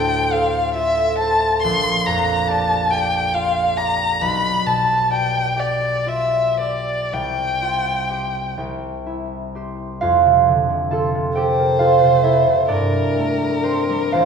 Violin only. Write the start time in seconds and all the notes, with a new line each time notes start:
Already playing: G5
0.32 F5
0.74 E5
1.19 A5
1.62 C6
2.06 A#5
2.47 A5
2.91 G5
3.34 F5
3.77 A#5
4.22 B5
4.67 A5
5.13 G5
5.59 D5
6.08 E5
6.60 D5
7.14 G5
11.38 C5
12.70 A#4
14.13 C5